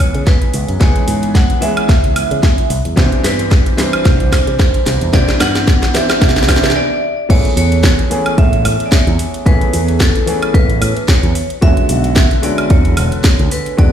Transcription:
Already playing: grand piano E3 G#3 B3 C#4 G#4
0.00 vibraphone C#5, kick, open hi-hat, high woodblock
0.14 picked electric bass C#3, closed hi-hat
0.27 vibraphone B4, kick, snare, closed hi-hat
0.42 closed hi-hat
0.54 picked electric bass C#2, open hi-hat
0.68 picked electric bass F#2, closed hi-hat
0.80 picked electric bass C#2, grand piano E3 G#3 B3 C#4 G#4, vibraphone C#5, kick, snare, closed hi-hat
0.96 closed hi-hat
1.08 picked electric bass G#2, open hi-hat
1.23 closed hi-hat
1.35 vibraphone F#5, kick, snare, closed hi-hat
1.50 closed hi-hat
1.61 grand piano E3 G#3 B3 C#4 G#4, vibraphone E5, open hi-hat
1.77 closed hi-hat, high woodblock
1.89 picked electric bass C#2, kick, snare, closed hi-hat
2.04 closed hi-hat
2.16 open hi-hat, high woodblock
2.31 picked electric bass C#3, closed hi-hat
2.43 kick, snare, closed hi-hat
2.58 closed hi-hat
2.70 picked electric bass C2, open hi-hat
2.85 picked electric bass E2, closed hi-hat
2.96 picked electric bass C2, grand piano E3 B3 C4 D4 G4, kick, snare, closed hi-hat
3.12 closed hi-hat
3.24 picked electric bass G2, vibraphone B4, snare, open hi-hat
3.39 closed hi-hat
3.51 kick, snare, closed hi-hat
3.66 closed hi-hat
3.77 grand piano E3 G3 C4 D4 G4, vibraphone C5, snare, open hi-hat
3.93 closed hi-hat, high woodblock
4.05 picked electric bass C2, kick, snare, closed hi-hat
4.20 closed hi-hat
4.32 kick, snare, open hi-hat, high woodblock
4.47 picked electric bass C3, closed hi-hat
4.59 kick, snare, closed hi-hat
4.74 closed hi-hat
4.86 picked electric bass C2, snare, open hi-hat
5.01 picked electric bass E2, closed hi-hat
5.13 picked electric bass C2, grand piano E3 B3 C4 D4 G4, vibraphone D5, kick, snare, closed hi-hat
5.28 snare, closed hi-hat
5.40 picked electric bass G2, vibraphone F#5, snare, open hi-hat, high woodblock
5.55 snare, closed hi-hat
5.68 kick, snare, closed hi-hat
5.83 snare, closed hi-hat
5.94 grand piano E3 B3 C4 D4 G4, vibraphone E5, snare, open hi-hat
6.10 snare, closed hi-hat, high woodblock
6.22 picked electric bass C2, kick, snare, closed hi-hat
6.29 snare
6.36 snare, closed hi-hat
6.43 snare
6.48 grand piano E3 B3 C4 D4 G4, kick, snare, open hi-hat, high woodblock
6.56 snare
6.62 picked electric bass C3, grand piano E3 B3 C4 D4 G4, snare, closed hi-hat
6.70 snare
6.76 vibraphone D5
7.29 picked electric bass A1, grand piano E3 A3 B3 C#4 G#4, vibraphone C#5, kick, closed hi-hat, crash
7.45 closed hi-hat
7.57 picked electric bass E2, vibraphone C#5, open hi-hat
7.72 closed hi-hat
7.84 kick, snare, closed hi-hat
7.99 closed hi-hat
8.10 grand piano E3 A3 B3 C#4 G#4, open hi-hat
8.26 closed hi-hat, high woodblock
8.38 picked electric bass A1, vibraphone E5, kick, closed hi-hat
8.53 closed hi-hat
8.65 picked electric bass A2, open hi-hat, high woodblock
8.80 closed hi-hat
8.86 vibraphone D5
8.92 vibraphone C#5, kick, snare, closed hi-hat
9.07 picked electric bass E2, closed hi-hat
9.19 open hi-hat
9.34 closed hi-hat
9.46 picked electric bass A1, grand piano E3 A3 B3 C#4 G#4, vibraphone B4, kick, closed hi-hat
9.61 closed hi-hat
9.73 picked electric bass E2, open hi-hat
9.88 closed hi-hat
10.00 vibraphone A4, kick, snare, closed hi-hat
10.15 closed hi-hat
10.26 grand piano E3 A3 B3 C#4 G#4, open hi-hat
10.42 closed hi-hat, high woodblock
10.54 picked electric bass A1, vibraphone B4, kick, closed hi-hat
10.70 closed hi-hat
10.81 picked electric bass A2, open hi-hat, high woodblock
10.97 closed hi-hat
11.08 vibraphone C#5, kick, snare, closed hi-hat
11.23 picked electric bass E2, closed hi-hat
11.35 open hi-hat
11.50 closed hi-hat
11.61 picked electric bass E2, grand piano D3 G#3 B3 C#4 F#4, vibraphone E5, kick, closed hi-hat
11.77 closed hi-hat
11.89 picked electric bass B1, open hi-hat
12.04 closed hi-hat
12.16 kick, snare, closed hi-hat
12.31 closed hi-hat
12.42 grand piano D3 G#3 B3 C#4 F#4, vibraphone D5, open hi-hat
12.58 closed hi-hat, high woodblock
12.70 picked electric bass E2, vibraphone C#5, kick, closed hi-hat
12.85 closed hi-hat
12.97 picked electric bass E1, open hi-hat, high woodblock
13.12 closed hi-hat
13.24 kick, snare, closed hi-hat
13.39 picked electric bass D2, closed hi-hat
13.51 vibraphone B4, open hi-hat
13.66 closed hi-hat
13.77 picked electric bass E2, grand piano C#3 D3 G#3 B3 F#4, vibraphone D5, kick, closed hi-hat

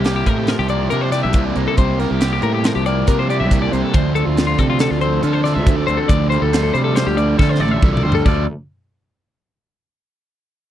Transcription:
Already playing: fingered electric bass C2, clean electric guitar C3 A#3 G4
0.04 overdriven electric guitar C3 G3 A#3 E4 G4, clean electric guitar G4, snare, closed hi-hat
0.16 clean electric guitar G4
0.26 fingered electric bass A2, clean electric guitar A#4, kick, closed hi-hat
0.38 clean electric guitar G4
0.47 clean electric guitar F3 A#4, snare, closed hi-hat
0.59 fingered electric bass C2, clean electric guitar G4
0.69 clean electric guitar A#3 D5, overdriven electric guitar A#3 E4 G4, closed hi-hat
0.90 fingered electric bass C3, overdriven electric guitar G3 A#3 E4 G4, clean electric guitar D4 A#4, closed hi-hat
1.02 clean electric guitar C5
1.11 overdriven electric guitar A#3 E4 G4, clean electric guitar G4 D5, snare, closed hi-hat
1.23 fingered electric bass C2, clean electric guitar E5
1.33 overdriven electric guitar C3 G3 A#3 E4 G4, clean electric guitar C3, kick, closed hi-hat
1.45 clean electric guitar D5
1.55 fingered electric bass C2, clean electric guitar A#3 C5, overdriven electric guitar A#3 E4 G4, closed hi-hat
1.68 clean electric guitar A4
1.77 fingered electric bass C2, clean electric guitar C3 C5, overdriven electric guitar C3 G3 A#3 E4 G4, kick, closed hi-hat
2.00 clean electric guitar A#3 A#4, overdriven electric guitar A#3 E4 G4, snare, closed hi-hat
2.11 fingered electric bass C2, clean electric guitar G4
2.21 overdriven electric guitar C3 G3 A#3 E4 G4, clean electric guitar G4, snare, closed hi-hat
2.33 clean electric guitar G4
2.42 fingered electric bass A2, clean electric guitar A#4, closed hi-hat
2.54 clean electric guitar G4
2.64 clean electric guitar F3 A#4, snare, closed hi-hat
2.75 fingered electric bass C2, clean electric guitar G4
2.86 clean electric guitar A#3 D5, overdriven electric guitar A#3 E4 G4, closed hi-hat
3.07 fingered electric bass C3, overdriven electric guitar G3 A#3 E4 G4, clean electric guitar D4 A#4, kick, closed hi-hat
3.19 clean electric guitar C5
3.29 overdriven electric guitar A#3 E4 G4, clean electric guitar G4 D5, closed hi-hat
3.40 fingered electric bass C2, clean electric guitar E5
3.51 clean electric guitar A#2, overdriven electric guitar C3 G3 A#3 E4 G4, kick, closed hi-hat
3.62 clean electric guitar D5
3.72 fingered electric bass C2, clean electric guitar C3 C5, overdriven electric guitar A#3 E4 G4, closed hi-hat
3.82 clean electric guitar A4
3.94 clean electric guitar D2 C5, fingered electric bass D2, overdriven electric guitar D3 F3 A3 D4, kick, closed hi-hat
4.15 overdriven electric guitar F3 A3 D4, clean electric guitar C4 A4, closed hi-hat
4.26 fingered electric bass D2, clean electric guitar F4
4.37 overdriven electric guitar D3 F3 A3 D4, snare, closed hi-hat
4.47 clean electric guitar F4
4.58 fingered electric bass C3, clean electric guitar C4 A4, kick, closed hi-hat
4.70 clean electric guitar F4
4.79 clean electric guitar D3 A4, snare, closed hi-hat
4.91 fingered electric bass D2, clean electric guitar F4
5.01 overdriven electric guitar F3 A3 D4, clean electric guitar C4 C5, closed hi-hat
5.22 overdriven electric guitar D3 F3 A3 D4, fingered electric bass D3, clean electric guitar F4 A4, closed hi-hat
5.33 clean electric guitar C5
5.44 overdriven electric guitar F3 A3 D4, clean electric guitar A4 D5, snare, closed hi-hat
5.54 fingered electric bass D2, clean electric guitar E5
5.65 clean electric guitar D2, overdriven electric guitar D3 F3 A3, kick, closed hi-hat
5.69 overdriven electric guitar D4
5.76 clean electric guitar D5
5.87 fingered electric bass D2, overdriven electric guitar F3 A3 D4, clean electric guitar C4 C5, closed hi-hat
5.97 clean electric guitar A4
6.08 fingered electric bass D2, clean electric guitar D2 D5, overdriven electric guitar D3 F3 A3 D4, kick, closed hi-hat
6.30 overdriven electric guitar F3 A3 D4, clean electric guitar G3 C5, closed hi-hat
6.42 fingered electric bass D2, clean electric guitar A4
6.53 overdriven electric guitar D3 F3 A3 D4, clean electric guitar C5, snare, closed hi-hat
6.63 clean electric guitar A4
6.74 fingered electric bass C3, clean electric guitar G3 C5, closed hi-hat
6.84 clean electric guitar A4
6.94 clean electric guitar D3 C5, snare, closed hi-hat
7.07 fingered electric bass D2, clean electric guitar G4
7.17 overdriven electric guitar F3 A3 D4, clean electric guitar G3 D5, closed hi-hat
7.39 overdriven electric guitar D3 F3 A3 D4, fingered electric bass D3, clean electric guitar F4 A4, kick, snare
7.49 clean electric guitar C5
7.55 snare
7.60 fingered electric bass A1, overdriven electric guitar F3 A3 D4, clean electric guitar A4 D5
7.68 clean electric guitar E5, high tom
7.82 fingered electric bass C2, clean electric guitar D2, overdriven electric guitar D3 F3 A3 D4, kick, mid tom
7.93 clean electric guitar D5
7.97 mid tom
8.03 fingered electric bass D2, clean electric guitar G3 C5, overdriven electric guitar A3 D4
8.08 overdriven electric guitar F3
8.12 clean electric guitar A4, floor tom
8.25 fingered electric bass D2, clean electric guitar D2 D3 G3 F4 A4 D5, overdriven electric guitar D3 F3 A3 D4, kick, crash

